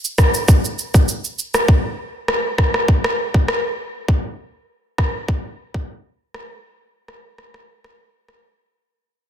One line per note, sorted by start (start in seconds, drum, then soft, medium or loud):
0.05 shaker medium
0.18 kick medium
0.18 cross-stick medium
0.18 shaker soft
0.34 shaker medium
0.48 kick loud
0.48 shaker medium
0.65 shaker medium
0.79 shaker soft
0.94 kick medium
0.94 shaker medium
1.09 shaker medium
1.24 shaker medium
1.39 shaker medium
1.54 cross-stick medium
1.54 shaker medium
1.68 kick loud
2.28 cross-stick loud
2.58 kick medium
2.58 cross-stick medium
2.74 cross-stick medium
2.88 kick loud
3.04 cross-stick loud
3.34 kick medium
3.48 cross-stick loud
4.08 kick loud
4.98 kick medium
4.98 cross-stick medium
5.28 kick loud
5.74 kick medium
6.34 cross-stick medium
7.08 cross-stick medium
7.38 cross-stick medium
7.54 cross-stick medium
7.84 cross-stick loud
8.28 cross-stick loud